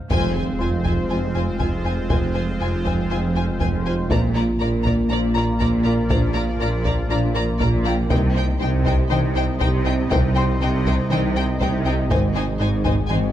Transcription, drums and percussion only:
0.11 taiko medium
0.86 taiko medium
1.60 taiko medium
2.10 taiko medium
2.85 taiko medium
3.61 taiko medium
4.11 taiko medium
4.85 taiko medium
5.60 taiko medium
6.10 taiko medium
6.85 taiko medium
7.60 taiko medium
8.10 taiko loud
8.86 taiko medium
9.11 taiko mid soft
9.61 taiko medium
10.12 taiko loud
10.86 taiko medium
11.12 taiko mid medium
11.61 taiko medium
12.11 taiko loud
12.85 taiko medium
13.10 taiko mid medium

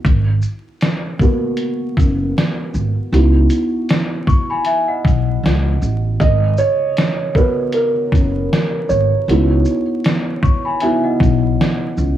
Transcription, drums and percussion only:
0.05 kick loud
0.05 closed hi-hat medium
0.42 shaker soft
0.81 snare loud
0.81 closed hi-hat medium
1.19 kick medium
1.19 shaker soft
1.57 closed hi-hat medium
1.97 kick medium
1.97 closed hi-hat soft
1.97 shaker soft
2.38 snare loud
2.38 closed hi-hat soft
2.74 shaker soft
3.14 closed hi-hat medium
3.50 closed hi-hat soft
3.50 shaker soft
3.89 snare loud
3.89 closed hi-hat medium
4.27 kick medium
4.27 shaker soft
4.65 closed hi-hat medium
5.05 kick medium
5.05 closed hi-hat soft
5.05 shaker soft
5.46 snare loud
5.46 closed hi-hat soft
5.82 shaker soft
6.20 kick loud
6.20 closed hi-hat medium
6.57 shaker soft
6.97 snare loud
6.97 closed hi-hat medium
7.35 kick medium
7.35 shaker soft
7.73 closed hi-hat medium
8.12 kick medium
8.12 closed hi-hat soft
8.12 shaker soft
8.53 snare loud
8.53 closed hi-hat soft
8.90 shaker soft
9.29 closed hi-hat medium
9.65 shaker soft
10.04 snare loud
10.04 closed hi-hat medium
10.43 kick medium
10.43 shaker soft
10.80 closed hi-hat medium
11.20 kick medium
11.20 closed hi-hat soft
11.20 shaker soft
11.61 snare loud
11.61 closed hi-hat soft
11.98 shaker soft

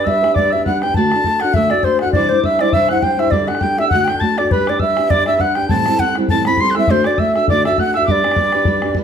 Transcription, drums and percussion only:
0.07 bodhran medium
0.24 bodhran medium
0.36 bodhran medium
0.59 bodhran soft
0.66 bodhran medium
0.82 bodhran soft
0.89 bodhran soft
0.94 bodhran medium
1.12 bodhran medium
1.24 bodhran medium
1.40 bodhran soft
1.54 bodhran medium
1.70 bodhran medium
1.78 bodhran soft
1.83 bodhran medium
1.99 bodhran medium
2.06 bodhran soft
2.13 bodhran medium
2.44 bodhran medium
2.59 bodhran medium
2.73 bodhran medium
2.89 bodhran medium
2.96 bodhran soft
3.03 bodhran medium
3.19 bodhran soft
3.27 bodhran soft
3.32 bodhran medium
3.48 bodhran medium
3.55 bodhran soft
3.61 bodhran medium
3.79 bodhran medium
3.91 bodhran medium
4.08 bodhran medium
4.14 bodhran soft
4.21 bodhran medium
4.38 bodhran medium
4.45 bodhran soft
4.51 bodhran medium
4.67 bodhran medium
4.80 bodhran medium
4.97 bodhran medium
5.10 bodhran medium
5.26 bodhran medium
5.33 bodhran soft
5.40 bodhran medium
5.55 bodhran soft
5.62 bodhran soft
5.69 bodhran medium
5.86 bodhran medium
5.99 bodhran medium
6.15 bodhran soft
6.28 bodhran medium
6.45 bodhran medium
6.52 bodhran soft
6.57 bodhran medium
6.75 bodhran medium
6.88 bodhran medium
7.04 bodhran medium
7.18 bodhran medium
7.36 bodhran soft
7.48 bodhran medium
7.65 bodhran medium
7.72 bodhran soft
7.78 bodhran medium
7.94 bodhran soft
8.02 bodhran soft
8.08 bodhran medium
8.24 bodhran medium
8.31 bodhran medium
8.36 bodhran medium
8.52 bodhran medium
8.65 bodhran medium
8.82 bodhran medium
8.89 bodhran soft
8.95 bodhran medium

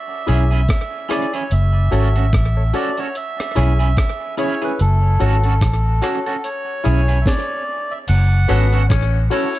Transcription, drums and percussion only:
0.28 closed hi-hat medium
0.52 closed hi-hat soft
0.69 kick medium
0.69 cross-stick loud
0.69 closed hi-hat medium
1.10 cross-stick medium
1.10 closed hi-hat medium
1.34 closed hi-hat medium
1.51 closed hi-hat medium
1.92 closed hi-hat medium
2.16 closed hi-hat soft
2.33 kick loud
2.33 cross-stick loud
2.33 closed hi-hat medium
2.74 closed hi-hat medium
2.97 closed hi-hat soft
3.15 closed hi-hat medium
3.40 cross-stick medium
3.56 closed hi-hat medium
3.80 closed hi-hat soft
3.97 kick medium
3.97 cross-stick loud
3.97 closed hi-hat medium
4.38 closed hi-hat medium
4.62 closed hi-hat medium
4.79 closed hi-hat medium
5.20 closed hi-hat medium
5.44 closed hi-hat soft
5.61 kick loud
5.61 cross-stick loud
5.61 closed hi-hat medium
6.02 cross-stick medium
6.02 closed hi-hat medium
6.26 closed hi-hat soft
6.44 closed hi-hat medium
6.85 closed hi-hat medium
7.09 closed hi-hat soft
7.26 kick medium
7.26 snare medium
8.08 closed hi-hat medium
8.08 crash loud
8.49 closed hi-hat medium
8.72 closed hi-hat medium
8.90 kick loud
8.90 cross-stick loud
8.90 closed hi-hat loud
9.31 closed hi-hat medium
9.55 closed hi-hat soft

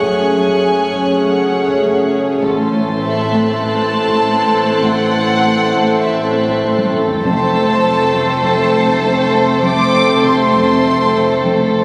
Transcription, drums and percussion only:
0.03 taiko medium
0.48 taiko medium
0.93 taiko medium
1.23 taiko medium
1.68 taiko medium
2.43 taiko medium
2.88 taiko medium
3.33 taiko medium
3.63 taiko medium
4.08 taiko medium
4.83 taiko medium
5.28 taiko medium
5.74 taiko medium
6.03 taiko medium
6.49 taiko medium
6.64 taiko low-mid medium
6.78 taiko high medium
6.93 taiko low-mid medium
7.08 taiko low loud
7.23 taiko medium
7.68 taiko medium
8.13 taiko medium
8.43 taiko medium
8.88 taiko medium
9.63 taiko medium
10.08 taiko medium
10.23 taiko mid medium
10.38 taiko mid soft
10.54 taiko medium
10.84 taiko medium
11.14 taiko mid medium
11.29 taiko medium
11.44 taiko mid soft
11.58 taiko mid soft

